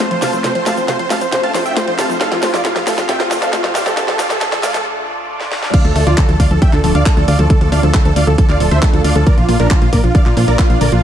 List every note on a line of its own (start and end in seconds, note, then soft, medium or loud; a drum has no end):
0.00 0.03 A3 medium
0.00 snare medium
0.00 closed hi-hat medium
0.00 riser medium
0.11 0.15 F3 medium
0.11 0.20 C5 medium
0.11 closed hi-hat soft
0.22 0.26 C3 medium
0.22 0.31 F5 medium
0.22 0.31 A5 medium
0.22 snare medium
0.22 open hi-hat loud
0.22 shaker medium
0.33 0.39 F3 medium
0.33 0.42 C5 medium
0.33 closed hi-hat soft
0.33 shaker medium
0.44 0.50 C3 medium
0.44 0.53 C5 medium
0.44 snare medium
0.44 closed hi-hat medium
0.44 shaker soft
0.55 0.61 F3 medium
0.55 0.64 C5 medium
0.55 closed hi-hat soft
0.66 0.72 A3 medium
0.66 0.75 F5 medium
0.66 0.75 A5 loud
0.66 snare medium
0.66 open hi-hat loud
0.66 shaker medium
0.76 0.80 F3 medium
0.76 0.86 C5 medium
0.76 closed hi-hat soft
0.76 shaker soft
0.88 0.91 C3 medium
0.88 0.97 C5 medium
0.88 snare medium
0.88 closed hi-hat medium
0.88 shaker soft
0.99 1.03 F3 medium
0.99 1.08 C5 medium
0.99 closed hi-hat soft
1.10 1.14 A3 medium
1.10 1.19 F5 medium
1.10 1.19 A5 medium
1.10 snare medium
1.10 open hi-hat loud
1.10 shaker medium
1.21 1.27 F3 medium
1.21 1.30 C5 medium
1.21 closed hi-hat soft
1.21 shaker soft
1.32 1.39 C3 medium
1.32 1.41 C5 medium
1.32 snare medium
1.32 closed hi-hat medium
1.32 shaker soft
1.43 1.48 C4 medium
1.43 1.52 F5 medium
1.43 1.52 A5 medium
1.43 closed hi-hat soft
1.54 1.61 F3 medium
1.54 1.63 C5 medium
1.54 snare medium
1.54 open hi-hat loud
1.54 shaker medium
1.65 1.74 E5 medium
1.65 1.74 G5 medium
1.65 closed hi-hat soft
1.65 shaker soft
1.76 1.79 A3 medium
1.76 1.85 C5 medium
1.76 snare medium
1.76 closed hi-hat medium
1.76 shaker soft
1.88 1.92 F3 medium
1.88 1.96 C5 medium
1.88 closed hi-hat soft
1.99 2.03 C3 medium
1.99 2.07 F5 medium
1.99 2.07 A5 medium
1.99 snare medium
1.99 open hi-hat loud
1.99 shaker medium
2.09 2.16 F3 medium
2.09 2.18 C5 medium
2.09 closed hi-hat soft
2.09 shaker medium
2.21 2.27 C3 medium
2.21 2.29 A4 medium
2.21 2.29 F5 loud
2.21 snare medium
2.21 closed hi-hat medium
2.21 shaker soft
2.32 2.38 F3 medium
2.32 2.40 F4 medium
2.32 snare medium
2.32 closed hi-hat soft
2.42 2.49 A3 medium
2.42 2.51 F4 medium
2.42 snare medium
2.42 open hi-hat loud
2.42 shaker medium
2.54 2.56 F3 medium
2.54 2.62 F4 medium
2.54 2.62 D5 medium
2.54 snare medium
2.54 closed hi-hat soft
2.54 shaker soft
2.65 2.67 C3 medium
2.65 2.73 F4 medium
2.65 snare medium
2.65 closed hi-hat medium
2.65 shaker soft
2.76 2.80 F3 medium
2.76 2.84 F4 medium
2.76 snare medium
2.76 closed hi-hat soft
2.87 2.91 A3 medium
2.87 2.95 A4 medium
2.87 2.95 F5 medium
2.87 snare medium
2.87 open hi-hat loud
2.87 shaker medium
2.98 3.04 F3 medium
2.98 3.06 F4 medium
2.98 snare medium
2.98 closed hi-hat soft
2.98 shaker soft
3.09 3.15 C3 medium
3.09 3.17 E5 medium
3.09 3.17 G5 loud
3.09 snare medium
3.09 closed hi-hat medium
3.09 shaker soft
3.20 3.24 C4 medium
3.20 3.29 F4 medium
3.20 snare medium
3.20 closed hi-hat soft
3.31 3.37 F3 medium
3.31 3.40 F4 medium
3.31 snare loud
3.31 open hi-hat loud
3.31 shaker medium
3.42 3.51 A4 medium
3.42 3.51 F5 medium
3.42 snare medium
3.42 closed hi-hat soft
3.42 shaker medium
3.53 3.55 A3 medium
3.53 3.62 F4 medium
3.53 snare loud
3.53 closed hi-hat medium
3.53 shaker soft
3.64 3.68 F3 medium
3.64 3.73 F4 medium
3.64 snare medium
3.64 closed hi-hat soft
3.75 3.79 C3 medium
3.75 3.84 D5 medium
3.75 3.84 F5 medium
3.75 snare loud
3.75 open hi-hat loud
3.75 shaker medium
3.86 3.92 F3 medium
3.86 3.95 A4 medium
3.86 snare medium
3.86 closed hi-hat soft
3.86 shaker soft
3.97 4.03 D3 medium
3.97 4.06 A4 medium
3.97 snare loud
3.97 closed hi-hat loud
3.97 shaker soft
4.08 4.14 F3 medium
4.08 4.17 A4 medium
4.08 snare medium
4.08 closed hi-hat soft
4.19 4.25 A3 medium
4.19 4.28 D5 medium
4.19 4.28 F5 loud
4.19 snare loud
4.19 open hi-hat loud
4.19 shaker medium
4.30 4.33 F3 medium
4.30 4.39 A4 medium
4.30 snare medium
4.30 closed hi-hat soft
4.30 shaker medium
4.41 4.44 D3 medium
4.41 4.50 A4 medium
4.41 snare loud
4.41 closed hi-hat loud
4.41 shaker soft
4.52 4.56 F3 medium
4.52 4.61 A4 medium
4.52 snare medium
4.52 closed hi-hat soft
4.63 4.67 A3 medium
4.63 4.72 D5 medium
4.63 4.72 F5 loud
4.63 snare loud
4.63 open hi-hat loud
4.63 shaker medium
4.74 4.80 F3 medium
4.74 4.83 A4 medium
4.74 snare medium
4.74 closed hi-hat soft
4.74 shaker medium
5.41 snare medium
5.52 snare medium
5.63 snare medium
5.74 5.80 D3 medium
5.74 5.82 D5 medium
5.74 5.82 F5 loud
5.74 kick loud
5.74 closed hi-hat loud
5.74 crash loud
5.85 5.93 D2 medium
5.85 5.91 F3 medium
5.85 5.93 A4 medium
5.85 closed hi-hat soft
5.96 6.04 D2 loud
5.96 6.02 A3 medium
5.96 6.04 A4 medium
5.96 open hi-hat loud
6.07 6.15 D2 medium
6.07 6.09 F3 medium
6.07 6.15 F4 medium
6.07 6.15 D5 medium
6.07 closed hi-hat soft
6.18 6.20 D3 medium
6.18 6.26 A4 medium
6.18 kick loud
6.18 clap loud
6.18 closed hi-hat loud
6.29 6.37 D2 medium
6.29 6.33 F3 medium
6.29 6.37 A4 medium
6.29 closed hi-hat soft
6.40 6.48 D2 loud
6.40 6.44 A3 medium
6.40 6.48 D5 medium
6.40 6.48 F5 medium
6.40 kick medium
6.40 open hi-hat loud
6.51 6.59 D2 medium
6.51 6.57 F3 medium
6.51 6.59 A4 medium
6.51 closed hi-hat soft
6.62 6.68 D3 medium
6.62 6.71 E5 medium
6.62 6.70 G5 loud
6.62 kick loud
6.62 closed hi-hat loud
6.73 6.81 D2 medium
6.73 6.77 D4 medium
6.73 6.82 A4 medium
6.73 clap soft
6.73 closed hi-hat soft
6.84 6.92 D1 loud
6.84 6.90 F3 medium
6.84 6.92 A4 medium
6.84 open hi-hat loud
6.95 7.03 D2 medium
6.95 7.04 D5 medium
6.95 7.04 F5 medium
6.95 closed hi-hat soft
7.06 7.08 A3 medium
7.06 7.15 A4 medium
7.06 kick loud
7.06 clap loud
7.06 closed hi-hat medium
7.17 7.25 D2 medium
7.17 7.21 F3 medium
7.17 7.26 A4 medium
7.17 closed hi-hat soft
7.28 7.36 D2 loud
7.28 7.32 D3 medium
7.28 7.37 D5 medium
7.28 7.37 F5 medium
7.28 open hi-hat loud
7.39 7.47 D2 medium
7.39 7.45 F3 medium
7.39 7.48 A4 medium
7.39 closed hi-hat soft
7.50 7.56 D3 medium
7.50 7.59 A4 medium
7.50 kick loud
7.50 closed hi-hat loud
7.61 7.69 D2 medium
7.61 7.67 F3 medium
7.61 7.70 A4 medium
7.61 closed hi-hat soft
7.72 7.80 D2 loud
7.72 7.78 A3 medium
7.72 7.81 D5 medium
7.72 7.81 F5 loud
7.72 open hi-hat loud
7.83 7.91 D2 medium
7.83 7.86 F3 medium
7.83 7.92 A4 medium
7.83 closed hi-hat soft
7.94 7.97 D3 medium
7.94 8.03 A4 medium
7.94 kick loud
7.94 clap loud
7.94 closed hi-hat medium
8.05 8.13 D2 medium
8.05 8.09 F3 medium
8.05 8.14 A4 medium
8.05 closed hi-hat soft
8.16 8.24 D2 loud
8.16 8.20 A3 medium
8.16 8.25 D5 medium
8.16 8.25 F5 loud
8.16 open hi-hat loud
8.27 8.35 D2 medium
8.27 8.33 F3 medium
8.27 8.36 A4 medium
8.27 closed hi-hat soft
8.38 8.44 D3 medium
8.38 8.47 A4 medium
8.38 kick loud
8.38 closed hi-hat medium
8.49 8.57 D2 medium
8.49 8.53 D4 medium
8.49 8.58 D5 medium
8.49 8.58 F5 medium
8.49 clap soft
8.49 closed hi-hat soft
8.60 8.68 D1 loud
8.60 8.66 F3 medium
8.60 8.69 A4 medium
8.60 open hi-hat loud
8.71 8.79 D2 loud
8.71 8.80 C5 medium
8.71 8.80 E5 medium
8.71 closed hi-hat soft
8.82 8.85 A3 medium
8.82 8.91 A4 medium
8.82 kick loud
8.82 clap loud
8.82 closed hi-hat medium
8.93 9.01 D2 medium
8.93 8.97 F3 medium
8.93 9.02 A4 medium
8.93 closed hi-hat soft
9.04 9.12 D2 loud
9.04 9.09 D3 medium
9.04 9.13 D5 medium
9.04 9.13 F5 medium
9.04 open hi-hat loud
9.16 9.23 D2 medium
9.16 9.22 F3 medium
9.16 9.24 A4 medium
9.16 closed hi-hat soft
9.27 9.33 D3 medium
9.27 9.35 A#4 medium
9.27 9.35 D5 loud
9.27 kick loud
9.27 closed hi-hat medium
9.38 9.45 A#1 medium
9.38 9.44 F3 medium
9.38 9.46 F4 medium
9.38 closed hi-hat soft
9.49 9.57 A#1 loud
9.49 9.55 A#3 medium
9.49 9.57 F4 medium
9.49 open hi-hat loud
9.60 9.68 A#1 medium
9.60 9.62 F3 medium
9.60 9.68 D4 medium
9.60 9.68 A#4 loud
9.60 closed hi-hat soft
9.71 9.73 D3 medium
9.71 9.79 F4 medium
9.71 kick loud
9.71 clap loud
9.71 closed hi-hat medium
9.82 9.90 A#1 medium
9.82 9.86 F3 medium
9.82 9.90 F4 medium
9.82 closed hi-hat soft
9.93 10.01 A#1 loud
9.93 9.97 A#3 medium
9.93 10.01 A#4 medium
9.93 10.01 D5 medium
9.93 kick medium
9.93 open hi-hat loud
10.04 10.12 A#1 medium
10.04 10.10 F3 medium
10.04 10.12 F4 medium
10.04 closed hi-hat soft
10.15 10.21 D3 medium
10.15 10.23 D5 medium
10.15 10.23 F5 loud
10.15 kick loud
10.15 closed hi-hat medium
10.26 10.34 A#1 medium
10.26 10.30 D4 medium
10.26 10.34 F4 medium
10.26 clap soft
10.26 closed hi-hat soft
10.37 10.45 A#2 loud
10.37 10.43 F3 medium
10.37 10.46 F4 medium
10.37 open hi-hat loud
10.48 10.56 A#1 medium
10.48 10.57 A#4 medium
10.48 10.57 D5 medium
10.48 closed hi-hat soft
10.59 10.61 A#3 medium
10.59 10.68 F4 medium
10.59 kick loud
10.59 clap loud
10.59 closed hi-hat medium
10.70 10.78 A#1 medium
10.70 10.74 F3 medium
10.70 10.79 F4 medium
10.70 closed hi-hat soft
10.81 10.89 A#1 loud
10.81 10.85 D3 medium
10.81 10.90 A#4 medium
10.81 10.90 D5 medium
10.81 open hi-hat loud
10.92 11.00 A#1 medium
10.92 10.98 F3 medium
10.92 11.01 F4 medium
10.92 closed hi-hat soft